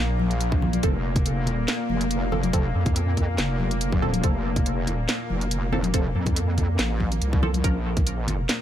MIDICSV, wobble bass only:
0, 0, Header, 1, 2, 480
1, 0, Start_track
1, 0, Tempo, 425532
1, 938, Time_signature, 4, 2, 24, 8
1, 9720, End_track
2, 0, Start_track
2, 0, Title_t, "Wobble bass"
2, 0, Program_c, 0, 39
2, 0, Note_on_c, 0, 34, 102
2, 921, Note_off_c, 0, 34, 0
2, 940, Note_on_c, 0, 29, 93
2, 1605, Note_off_c, 0, 29, 0
2, 1605, Note_on_c, 0, 28, 93
2, 1881, Note_off_c, 0, 28, 0
2, 2139, Note_on_c, 0, 29, 98
2, 3081, Note_off_c, 0, 29, 0
2, 3098, Note_on_c, 0, 41, 99
2, 3801, Note_off_c, 0, 41, 0
2, 3819, Note_on_c, 0, 29, 99
2, 4521, Note_off_c, 0, 29, 0
2, 4539, Note_on_c, 0, 27, 94
2, 4761, Note_off_c, 0, 27, 0
2, 4779, Note_on_c, 0, 29, 95
2, 5444, Note_off_c, 0, 29, 0
2, 5444, Note_on_c, 0, 28, 95
2, 5721, Note_off_c, 0, 28, 0
2, 5980, Note_on_c, 0, 29, 95
2, 6922, Note_off_c, 0, 29, 0
2, 6941, Note_on_c, 0, 41, 95
2, 7642, Note_off_c, 0, 41, 0
2, 7659, Note_on_c, 0, 33, 99
2, 8121, Note_off_c, 0, 33, 0
2, 8140, Note_on_c, 0, 36, 89
2, 8601, Note_off_c, 0, 36, 0
2, 8620, Note_on_c, 0, 34, 95
2, 9562, Note_off_c, 0, 34, 0
2, 9720, End_track
0, 0, End_of_file